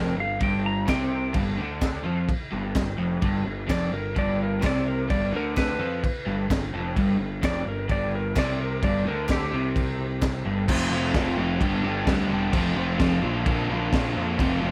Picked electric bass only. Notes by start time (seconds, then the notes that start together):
Already playing: F1
0.16 G1
0.41 G1
0.89 C2
1.35 G1
1.59 D2
2.06 F2
2.29 muted picked electric bass stroke
2.53 G1
2.75 G1
2.98 F1
3.22 G1
3.46 G1
3.69 F1
3.92 G1
4.16 G1
4.64 C2
5.10 G1
5.33 D2
5.79 F2
6.04 muted picked electric bass stroke
6.27 G1
6.51 G1
6.74 F1
6.97 G1
7.19 G1
7.43 F1
7.66 G1
7.90 G1
8.37 C2
8.83 G1
9.05 D2
9.53 C2
10.46 G1
10.69 F1
10.91 F1
11.14 F1
11.38 F1
11.61 G1
11.84 G1
12.08 D2
12.31 E1
12.54 F1
12.77 F1
13.00 F1
13.24 A#1
13.46 A#1
13.70 A#1
13.93 A#1
14.16 F2
14.40 F1
14.63 F1